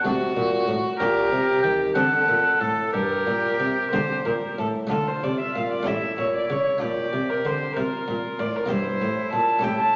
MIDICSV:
0, 0, Header, 1, 5, 480
1, 0, Start_track
1, 0, Key_signature, -2, "minor"
1, 0, Tempo, 640342
1, 749, Time_signature, 6, 3, 24, 8
1, 1713, Tempo, 653595
1, 3641, Key_signature, -1, "minor"
1, 4113, Tempo, 629591
1, 7472, End_track
2, 0, Start_track
2, 0, Title_t, "Violin"
2, 0, Program_c, 0, 40
2, 30, Note_on_c, 0, 66, 96
2, 733, Note_off_c, 0, 66, 0
2, 746, Note_on_c, 0, 67, 91
2, 1455, Note_off_c, 0, 67, 0
2, 1474, Note_on_c, 0, 69, 87
2, 2179, Note_off_c, 0, 69, 0
2, 2191, Note_on_c, 0, 70, 83
2, 2856, Note_off_c, 0, 70, 0
2, 2907, Note_on_c, 0, 72, 84
2, 3161, Note_on_c, 0, 70, 65
2, 3172, Note_off_c, 0, 72, 0
2, 3398, Note_off_c, 0, 70, 0
2, 3402, Note_on_c, 0, 69, 60
2, 3461, Note_off_c, 0, 69, 0
2, 3638, Note_on_c, 0, 69, 65
2, 3763, Note_on_c, 0, 72, 58
2, 3774, Note_off_c, 0, 69, 0
2, 3884, Note_on_c, 0, 74, 68
2, 3895, Note_off_c, 0, 72, 0
2, 3994, Note_off_c, 0, 74, 0
2, 3999, Note_on_c, 0, 76, 65
2, 4112, Note_off_c, 0, 76, 0
2, 4119, Note_on_c, 0, 77, 58
2, 4231, Note_off_c, 0, 77, 0
2, 4236, Note_on_c, 0, 74, 63
2, 4359, Note_on_c, 0, 76, 69
2, 4370, Note_off_c, 0, 74, 0
2, 4595, Note_off_c, 0, 76, 0
2, 4600, Note_on_c, 0, 73, 63
2, 4717, Note_off_c, 0, 73, 0
2, 4725, Note_on_c, 0, 74, 62
2, 4843, Note_on_c, 0, 73, 67
2, 4854, Note_off_c, 0, 74, 0
2, 5071, Note_off_c, 0, 73, 0
2, 5076, Note_on_c, 0, 74, 73
2, 5444, Note_on_c, 0, 70, 61
2, 5456, Note_off_c, 0, 74, 0
2, 5564, Note_on_c, 0, 72, 67
2, 5575, Note_off_c, 0, 70, 0
2, 5791, Note_off_c, 0, 72, 0
2, 5796, Note_on_c, 0, 70, 67
2, 6279, Note_on_c, 0, 74, 70
2, 6290, Note_off_c, 0, 70, 0
2, 6405, Note_on_c, 0, 70, 65
2, 6417, Note_off_c, 0, 74, 0
2, 6513, Note_off_c, 0, 70, 0
2, 6517, Note_on_c, 0, 72, 73
2, 6984, Note_off_c, 0, 72, 0
2, 6989, Note_on_c, 0, 81, 68
2, 7227, Note_on_c, 0, 79, 76
2, 7239, Note_off_c, 0, 81, 0
2, 7345, Note_off_c, 0, 79, 0
2, 7349, Note_on_c, 0, 81, 74
2, 7472, Note_off_c, 0, 81, 0
2, 7472, End_track
3, 0, Start_track
3, 0, Title_t, "Oboe"
3, 0, Program_c, 1, 68
3, 738, Note_on_c, 1, 70, 113
3, 1194, Note_off_c, 1, 70, 0
3, 1220, Note_on_c, 1, 79, 104
3, 1330, Note_off_c, 1, 79, 0
3, 1462, Note_on_c, 1, 78, 113
3, 1949, Note_on_c, 1, 69, 90
3, 1960, Note_off_c, 1, 78, 0
3, 2182, Note_off_c, 1, 69, 0
3, 2187, Note_on_c, 1, 67, 96
3, 3375, Note_off_c, 1, 67, 0
3, 3636, Note_on_c, 1, 65, 56
3, 4354, Note_on_c, 1, 64, 53
3, 4366, Note_off_c, 1, 65, 0
3, 5068, Note_off_c, 1, 64, 0
3, 5073, Note_on_c, 1, 67, 69
3, 5798, Note_on_c, 1, 65, 50
3, 5809, Note_off_c, 1, 67, 0
3, 6517, Note_off_c, 1, 65, 0
3, 6525, Note_on_c, 1, 64, 59
3, 7225, Note_off_c, 1, 64, 0
3, 7243, Note_on_c, 1, 64, 61
3, 7472, Note_off_c, 1, 64, 0
3, 7472, End_track
4, 0, Start_track
4, 0, Title_t, "Harpsichord"
4, 0, Program_c, 2, 6
4, 36, Note_on_c, 2, 57, 61
4, 38, Note_on_c, 2, 48, 77
4, 44, Note_on_c, 2, 62, 58
4, 47, Note_on_c, 2, 66, 53
4, 249, Note_off_c, 2, 48, 0
4, 275, Note_on_c, 2, 46, 76
4, 487, Note_off_c, 2, 46, 0
4, 508, Note_on_c, 2, 45, 72
4, 720, Note_off_c, 2, 57, 0
4, 724, Note_off_c, 2, 45, 0
4, 724, Note_off_c, 2, 62, 0
4, 726, Note_off_c, 2, 66, 0
4, 751, Note_on_c, 2, 58, 50
4, 752, Note_on_c, 2, 46, 68
4, 754, Note_on_c, 2, 62, 53
4, 760, Note_on_c, 2, 67, 53
4, 967, Note_off_c, 2, 46, 0
4, 988, Note_on_c, 2, 48, 68
4, 1205, Note_off_c, 2, 48, 0
4, 1229, Note_on_c, 2, 51, 63
4, 1442, Note_off_c, 2, 58, 0
4, 1443, Note_off_c, 2, 62, 0
4, 1446, Note_off_c, 2, 67, 0
4, 1447, Note_off_c, 2, 51, 0
4, 1465, Note_on_c, 2, 60, 53
4, 1466, Note_on_c, 2, 50, 69
4, 1469, Note_on_c, 2, 62, 52
4, 1475, Note_on_c, 2, 69, 50
4, 1687, Note_off_c, 2, 50, 0
4, 1713, Note_on_c, 2, 46, 66
4, 1928, Note_off_c, 2, 46, 0
4, 1951, Note_on_c, 2, 45, 57
4, 2160, Note_off_c, 2, 60, 0
4, 2162, Note_off_c, 2, 62, 0
4, 2165, Note_off_c, 2, 69, 0
4, 2168, Note_off_c, 2, 45, 0
4, 2195, Note_on_c, 2, 43, 58
4, 2412, Note_off_c, 2, 43, 0
4, 2437, Note_on_c, 2, 46, 59
4, 2654, Note_off_c, 2, 46, 0
4, 2678, Note_on_c, 2, 48, 57
4, 2895, Note_off_c, 2, 48, 0
4, 2920, Note_on_c, 2, 58, 54
4, 2921, Note_on_c, 2, 50, 65
4, 2924, Note_on_c, 2, 62, 48
4, 2927, Note_on_c, 2, 67, 55
4, 3137, Note_off_c, 2, 50, 0
4, 3158, Note_on_c, 2, 46, 60
4, 3268, Note_off_c, 2, 58, 0
4, 3270, Note_off_c, 2, 62, 0
4, 3377, Note_off_c, 2, 46, 0
4, 3402, Note_on_c, 2, 45, 56
4, 3445, Note_off_c, 2, 67, 0
4, 3610, Note_on_c, 2, 57, 36
4, 3618, Note_off_c, 2, 45, 0
4, 3622, Note_on_c, 2, 62, 37
4, 3632, Note_on_c, 2, 65, 38
4, 3644, Note_on_c, 2, 50, 41
4, 3854, Note_off_c, 2, 57, 0
4, 3855, Note_off_c, 2, 50, 0
4, 3882, Note_on_c, 2, 48, 44
4, 4092, Note_off_c, 2, 48, 0
4, 4115, Note_on_c, 2, 46, 40
4, 4323, Note_off_c, 2, 62, 0
4, 4323, Note_on_c, 2, 57, 39
4, 4328, Note_off_c, 2, 65, 0
4, 4332, Note_off_c, 2, 46, 0
4, 4333, Note_on_c, 2, 61, 41
4, 4346, Note_on_c, 2, 67, 41
4, 4356, Note_on_c, 2, 45, 46
4, 4573, Note_off_c, 2, 45, 0
4, 4592, Note_on_c, 2, 46, 44
4, 4812, Note_off_c, 2, 46, 0
4, 4834, Note_on_c, 2, 49, 46
4, 5041, Note_off_c, 2, 57, 0
4, 5046, Note_off_c, 2, 61, 0
4, 5050, Note_on_c, 2, 62, 38
4, 5053, Note_off_c, 2, 49, 0
4, 5053, Note_off_c, 2, 67, 0
4, 5060, Note_on_c, 2, 65, 34
4, 5075, Note_on_c, 2, 46, 40
4, 5294, Note_off_c, 2, 46, 0
4, 5315, Note_on_c, 2, 48, 44
4, 5535, Note_off_c, 2, 48, 0
4, 5560, Note_on_c, 2, 50, 47
4, 5777, Note_off_c, 2, 50, 0
4, 5801, Note_on_c, 2, 48, 46
4, 6017, Note_off_c, 2, 48, 0
4, 6039, Note_on_c, 2, 46, 48
4, 6256, Note_off_c, 2, 46, 0
4, 6278, Note_on_c, 2, 45, 45
4, 6474, Note_off_c, 2, 62, 0
4, 6479, Note_off_c, 2, 65, 0
4, 6480, Note_on_c, 2, 58, 37
4, 6492, Note_on_c, 2, 64, 38
4, 6494, Note_off_c, 2, 45, 0
4, 6503, Note_on_c, 2, 67, 35
4, 6515, Note_on_c, 2, 43, 47
4, 6732, Note_off_c, 2, 43, 0
4, 6754, Note_on_c, 2, 45, 46
4, 6971, Note_off_c, 2, 45, 0
4, 6991, Note_on_c, 2, 46, 46
4, 7191, Note_on_c, 2, 57, 39
4, 7194, Note_off_c, 2, 58, 0
4, 7201, Note_off_c, 2, 64, 0
4, 7204, Note_on_c, 2, 61, 44
4, 7206, Note_off_c, 2, 67, 0
4, 7209, Note_off_c, 2, 46, 0
4, 7218, Note_on_c, 2, 67, 45
4, 7229, Note_on_c, 2, 45, 47
4, 7447, Note_off_c, 2, 45, 0
4, 7472, Note_off_c, 2, 57, 0
4, 7472, Note_off_c, 2, 61, 0
4, 7472, Note_off_c, 2, 67, 0
4, 7472, End_track
5, 0, Start_track
5, 0, Title_t, "Bassoon"
5, 0, Program_c, 3, 70
5, 29, Note_on_c, 3, 48, 93
5, 263, Note_off_c, 3, 48, 0
5, 267, Note_on_c, 3, 46, 85
5, 502, Note_off_c, 3, 46, 0
5, 506, Note_on_c, 3, 45, 82
5, 615, Note_off_c, 3, 45, 0
5, 749, Note_on_c, 3, 46, 92
5, 982, Note_off_c, 3, 46, 0
5, 986, Note_on_c, 3, 48, 79
5, 1223, Note_off_c, 3, 48, 0
5, 1230, Note_on_c, 3, 51, 76
5, 1464, Note_off_c, 3, 51, 0
5, 1468, Note_on_c, 3, 50, 88
5, 1703, Note_off_c, 3, 50, 0
5, 1708, Note_on_c, 3, 46, 73
5, 1816, Note_off_c, 3, 46, 0
5, 1947, Note_on_c, 3, 45, 70
5, 2182, Note_off_c, 3, 45, 0
5, 2186, Note_on_c, 3, 43, 81
5, 2425, Note_off_c, 3, 43, 0
5, 2429, Note_on_c, 3, 46, 75
5, 2663, Note_off_c, 3, 46, 0
5, 2667, Note_on_c, 3, 48, 68
5, 2909, Note_off_c, 3, 48, 0
5, 2912, Note_on_c, 3, 50, 72
5, 3149, Note_off_c, 3, 50, 0
5, 3153, Note_on_c, 3, 46, 69
5, 3264, Note_off_c, 3, 46, 0
5, 3397, Note_on_c, 3, 45, 70
5, 3634, Note_off_c, 3, 45, 0
5, 3638, Note_on_c, 3, 50, 53
5, 3859, Note_off_c, 3, 50, 0
5, 3875, Note_on_c, 3, 48, 49
5, 3981, Note_off_c, 3, 48, 0
5, 4109, Note_on_c, 3, 46, 51
5, 4348, Note_off_c, 3, 46, 0
5, 4351, Note_on_c, 3, 45, 59
5, 4590, Note_off_c, 3, 45, 0
5, 4596, Note_on_c, 3, 46, 45
5, 4837, Note_on_c, 3, 49, 47
5, 4849, Note_off_c, 3, 46, 0
5, 5074, Note_off_c, 3, 49, 0
5, 5079, Note_on_c, 3, 46, 58
5, 5320, Note_on_c, 3, 48, 56
5, 5332, Note_off_c, 3, 46, 0
5, 5555, Note_off_c, 3, 48, 0
5, 5559, Note_on_c, 3, 50, 50
5, 5794, Note_off_c, 3, 50, 0
5, 5799, Note_on_c, 3, 48, 60
5, 5907, Note_off_c, 3, 48, 0
5, 6038, Note_on_c, 3, 46, 50
5, 6147, Note_off_c, 3, 46, 0
5, 6278, Note_on_c, 3, 45, 54
5, 6513, Note_off_c, 3, 45, 0
5, 6519, Note_on_c, 3, 43, 54
5, 6753, Note_off_c, 3, 43, 0
5, 6758, Note_on_c, 3, 45, 59
5, 7000, Note_on_c, 3, 46, 52
5, 7011, Note_off_c, 3, 45, 0
5, 7233, Note_off_c, 3, 46, 0
5, 7237, Note_on_c, 3, 45, 59
5, 7470, Note_off_c, 3, 45, 0
5, 7472, End_track
0, 0, End_of_file